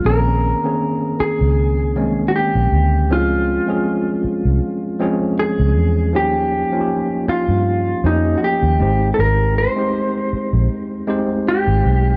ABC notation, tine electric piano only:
X:1
M:4/4
L:1/16
Q:"Swing 16ths" 1/4=79
K:Bbdor
V:1 name="Tine electric piano"
[E,B,CDA]2 z [E,B,CDA]4- [E,B,CDA] z2 [E,A,B,CD]4 z2 | [F,A,CDA]2 z [F,A,CDA]4- [F,A,CDA] z2 [F,A,CDA]4 z2 | [F,B,DEG]2 z [F,B,DEFG]4- [F,B,DEFG] z2 [F,B,DEG]4 [A,CEGc]2- | [A,CEGc]2 z [A,CEGc]4- [A,CEGc] z2 [A,CEGc]4 z2 |]